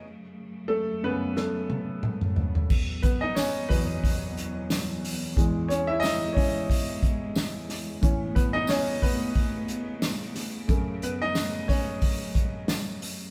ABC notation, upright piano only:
X:1
M:4/4
L:1/16
Q:"Swing 16ths" 1/4=90
K:E
V:1 name="Upright piano"
z4 [A,A]2 [B,B]2 [A,A]6 z2 | z2 [B,B] [Dd] [Cc]2 [B,B]8 z2 | z2 [Cc] [Ee] [Dd]2 [Cc]8 z2 | z2 [B,B] [Dd] [Cc]2 [B,B]8 z2 |
z2 [B,B] [Dd]3 [Cc]8 z2 |]
V:2 name="Upright piano" clef=bass
z6 [F,,C,A,]6 z4 | z6 [E,,B,,F,]2 z8 | [E,,E,G,]2 z12 z2 | [A,,E,C]2 z12 z2 |
[F,,C,A,]2 z12 z2 |]